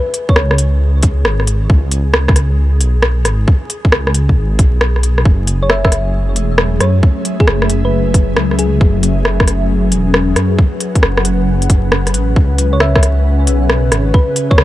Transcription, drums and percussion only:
0.14 closed hi-hat medium
0.29 kick loud
0.36 cross-stick loud
0.51 cross-stick medium
0.58 closed hi-hat medium
1.03 kick loud
1.03 closed hi-hat medium
1.25 cross-stick loud
1.40 cross-stick soft
1.47 closed hi-hat medium
1.70 kick loud
1.91 closed hi-hat medium
2.14 cross-stick loud
2.28 kick loud
2.28 cross-stick medium
2.36 cross-stick soft
2.36 closed hi-hat medium
2.81 closed hi-hat medium
3.02 cross-stick loud
3.25 cross-stick medium
3.25 closed hi-hat medium
3.48 kick loud
3.70 closed hi-hat medium
3.85 kick loud
3.92 cross-stick loud
4.07 cross-stick medium
4.14 closed hi-hat medium
4.29 kick medium
4.59 kick loud
4.59 closed hi-hat medium
4.81 cross-stick loud
4.96 cross-stick soft
5.03 closed hi-hat medium
5.18 cross-stick medium
5.25 kick loud
5.47 closed hi-hat medium
5.70 cross-stick loud
5.85 kick loud
5.85 cross-stick medium
5.92 cross-stick soft
5.92 closed hi-hat medium
6.36 closed hi-hat medium
6.58 cross-stick loud
6.80 cross-stick medium
6.80 closed hi-hat medium
7.03 kick loud
7.25 closed hi-hat soft
7.40 kick loud
7.47 cross-stick loud
7.62 cross-stick medium
7.70 closed hi-hat soft
8.14 kick loud
8.14 closed hi-hat medium
8.37 cross-stick loud
8.51 cross-stick soft
8.59 closed hi-hat medium
8.81 kick loud
9.03 closed hi-hat medium
9.25 cross-stick medium
9.40 kick loud
9.40 cross-stick medium
9.48 cross-stick soft
9.48 closed hi-hat medium
9.92 closed hi-hat medium
10.14 cross-stick loud
10.36 cross-stick medium
10.36 closed hi-hat medium
10.59 kick loud
10.80 closed hi-hat medium
10.95 kick medium
10.95 closed hi-hat soft
11.03 cross-stick medium
11.17 cross-stick medium
11.25 closed hi-hat medium
11.62 closed hi-hat soft
11.70 kick loud
11.70 closed hi-hat medium
11.92 cross-stick loud
12.07 cross-stick soft
12.07 closed hi-hat soft
12.14 closed hi-hat medium
12.36 kick loud
12.58 closed hi-hat medium
12.80 cross-stick loud
12.95 kick loud
12.95 cross-stick medium
13.03 cross-stick soft
13.03 closed hi-hat medium
13.47 closed hi-hat medium
13.70 cross-stick loud
13.92 cross-stick medium
13.92 closed hi-hat medium
14.14 kick loud
14.36 closed hi-hat medium
14.51 kick loud
14.58 cross-stick loud

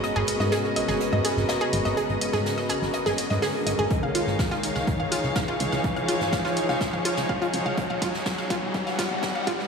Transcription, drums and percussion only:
0.03 closed hi-hat medium
0.27 closed hi-hat medium
0.27 open hi-hat loud
0.40 snare soft
0.52 snare loud
0.52 closed hi-hat medium
0.64 snare soft
0.76 closed hi-hat medium
0.76 open hi-hat medium
0.88 snare soft
1.00 closed hi-hat medium
1.25 snare soft
1.25 closed hi-hat medium
1.25 open hi-hat loud
1.37 snare soft
1.49 snare loud
1.49 closed hi-hat medium
1.73 closed hi-hat medium
1.73 open hi-hat medium
1.86 snare soft
1.97 closed hi-hat medium
2.09 closed hi-hat soft
2.21 closed hi-hat medium
2.21 open hi-hat loud
2.34 snare medium
2.46 snare loud
2.46 closed hi-hat medium
2.58 snare soft
2.69 closed hi-hat medium
2.69 open hi-hat medium
2.82 snare soft
2.93 closed hi-hat medium
3.06 snare medium
3.18 snare soft
3.18 closed hi-hat medium
3.18 open hi-hat loud
3.31 snare soft
3.43 snare loud
3.43 open hi-hat medium
3.66 closed hi-hat medium
3.66 open hi-hat medium
3.90 kick loud
3.90 closed hi-hat medium
4.15 closed hi-hat medium
4.15 open hi-hat loud
4.28 snare soft
4.39 kick loud
4.39 snare loud
4.39 closed hi-hat medium
4.52 snare soft
4.63 closed hi-hat medium
4.63 open hi-hat medium
4.75 snare soft
4.87 kick loud
4.87 closed hi-hat medium
5.12 snare soft
5.12 closed hi-hat medium
5.12 open hi-hat loud
5.23 snare soft
5.35 kick loud
5.35 snare loud
5.35 closed hi-hat medium
5.60 closed hi-hat medium
5.60 open hi-hat medium
5.72 snare soft
5.84 kick loud
5.84 closed hi-hat medium
5.96 closed hi-hat soft
6.08 closed hi-hat medium
6.08 open hi-hat loud
6.21 snare medium
6.32 kick loud
6.32 snare loud
6.32 closed hi-hat medium
6.46 snare soft
6.56 closed hi-hat medium
6.56 open hi-hat medium
6.69 snare soft
6.81 kick loud
6.81 snare loud
6.81 closed hi-hat medium
7.05 closed hi-hat medium
7.05 open hi-hat loud
7.17 snare medium
7.17 closed hi-hat medium
7.29 kick loud
7.42 closed hi-hat medium
7.53 closed hi-hat medium
7.53 open hi-hat medium
7.78 kick loud
7.78 closed hi-hat medium
8.02 kick loud
8.02 closed hi-hat medium
8.02 open hi-hat loud
8.14 snare soft
8.26 kick loud
8.26 snare loud
8.26 closed hi-hat medium
8.38 snare soft
8.50 kick loud
8.50 closed hi-hat medium
8.50 open hi-hat medium
8.74 kick loud
8.74 snare soft
8.74 closed hi-hat medium
8.87 snare soft
8.99 kick loud
8.99 snare loud
8.99 closed hi-hat medium
8.99 open hi-hat loud
9.22 kick loud
9.22 snare loud
9.22 closed hi-hat medium
9.47 kick loud
9.47 closed hi-hat medium
9.47 open hi-hat medium
9.60 snare soft

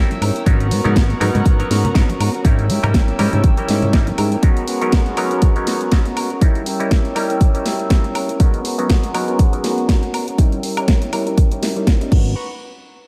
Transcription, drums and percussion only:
0.11 closed hi-hat soft
0.11 tambourine soft
0.11 high conga medium
0.22 open hi-hat loud
0.22 high woodblock medium
0.36 closed hi-hat soft
0.36 tambourine medium
0.46 kick loud
0.46 closed hi-hat medium
0.46 tambourine medium
0.46 high conga medium
0.60 closed hi-hat soft
0.60 tambourine soft
0.71 open hi-hat loud
0.85 closed hi-hat soft
0.85 tambourine medium
0.85 high conga medium
0.85 low conga medium
0.96 kick loud
0.96 snare loud
0.96 closed hi-hat medium
1.10 closed hi-hat soft
1.10 tambourine soft
1.21 open hi-hat loud
1.21 high conga medium
1.21 high woodblock medium
1.35 closed hi-hat soft
1.35 tambourine medium
1.35 low conga medium
1.46 kick loud
1.46 closed hi-hat medium
1.59 closed hi-hat soft
1.59 tambourine soft
1.59 high conga medium
1.71 snare medium
1.71 open hi-hat loud
1.84 closed hi-hat soft
1.84 tambourine medium
1.84 low conga loud
1.95 kick loud
1.95 snare loud
1.95 closed hi-hat medium
2.09 closed hi-hat soft
2.09 tambourine soft
2.09 high conga loud
2.20 open hi-hat loud
2.20 high woodblock medium
2.34 tambourine medium
2.45 kick loud
2.45 closed hi-hat medium
2.45 tambourine medium
2.45 high conga loud
2.59 closed hi-hat soft
2.59 tambourine soft
2.70 open hi-hat loud
2.84 closed hi-hat soft
2.84 tambourine medium
2.84 high conga medium
2.84 low conga medium
2.84 high woodblock medium
2.94 kick loud
2.94 snare loud
2.94 closed hi-hat medium
3.08 closed hi-hat soft
3.08 tambourine soft
3.19 open hi-hat loud
3.19 high conga loud
3.19 high woodblock medium
3.33 closed hi-hat soft
3.33 tambourine medium
3.33 low conga medium
3.44 kick loud
3.44 closed hi-hat medium
3.57 closed hi-hat soft
3.57 tambourine soft
3.57 high conga medium
3.68 snare medium
3.68 open hi-hat loud
3.82 closed hi-hat soft
3.82 tambourine medium
3.82 low conga medium
3.93 kick loud
3.93 snare loud
3.93 closed hi-hat medium
4.07 closed hi-hat soft
4.07 tambourine soft
4.07 high conga loud
4.18 open hi-hat loud
4.18 high woodblock medium
4.32 closed hi-hat soft
4.32 tambourine medium
4.43 kick loud
4.43 closed hi-hat medium
4.57 closed hi-hat soft
4.68 open hi-hat loud
4.82 closed hi-hat soft
4.92 kick loud
4.92 snare loud
4.92 closed hi-hat medium
5.06 closed hi-hat soft
5.17 open hi-hat loud
5.17 high woodblock medium
5.31 closed hi-hat soft
5.42 kick loud
5.42 closed hi-hat medium
5.56 closed hi-hat soft
5.67 snare medium
5.67 open hi-hat loud
5.81 closed hi-hat soft
5.92 kick loud
5.92 snare loud
5.92 closed hi-hat medium
6.06 closed hi-hat soft
6.17 open hi-hat loud
6.17 high woodblock medium
6.30 closed hi-hat soft
6.41 kick loud
6.41 closed hi-hat medium
6.55 closed hi-hat soft
6.66 open hi-hat loud
6.80 closed hi-hat soft
6.91 kick loud
6.91 snare loud
6.91 closed hi-hat medium
7.05 closed hi-hat soft
7.16 open hi-hat loud
7.16 high woodblock medium
7.30 closed hi-hat soft
7.41 kick loud
7.41 closed hi-hat medium
7.55 closed hi-hat soft
7.66 snare medium
7.66 open hi-hat loud
7.79 closed hi-hat soft
7.90 kick loud
7.90 snare loud
7.90 closed hi-hat medium
8.04 closed hi-hat soft
8.15 open hi-hat loud
8.15 high woodblock medium
8.29 closed hi-hat soft
8.40 kick loud
8.40 closed hi-hat medium
8.54 closed hi-hat soft
8.65 open hi-hat loud
8.79 closed hi-hat soft
8.90 kick loud
8.90 snare loud
8.90 closed hi-hat loud
9.04 closed hi-hat soft
9.14 open hi-hat loud
9.14 high woodblock medium
9.28 closed hi-hat soft
9.39 kick loud
9.39 closed hi-hat medium
9.53 closed hi-hat soft
9.64 snare medium
9.64 open hi-hat loud
9.78 closed hi-hat soft
9.89 kick loud
9.89 snare loud
9.89 closed hi-hat loud
10.03 closed hi-hat soft
10.14 open hi-hat loud
10.14 high woodblock medium
10.28 closed hi-hat soft
10.38 kick loud
10.38 closed hi-hat loud
10.52 closed hi-hat soft
10.63 open hi-hat loud
10.77 closed hi-hat soft
10.77 high woodblock medium
10.88 kick loud
10.88 snare loud
10.88 closed hi-hat loud
11.02 closed hi-hat soft
11.13 open hi-hat loud
11.13 high woodblock medium
11.27 closed hi-hat soft
11.38 kick loud
11.38 closed hi-hat medium
11.52 closed hi-hat soft
11.63 snare medium
11.63 open hi-hat loud
11.76 closed hi-hat soft
11.87 kick loud
11.87 snare loud
11.87 closed hi-hat loud
12.01 closed hi-hat soft
12.12 kick loud
12.12 crash medium

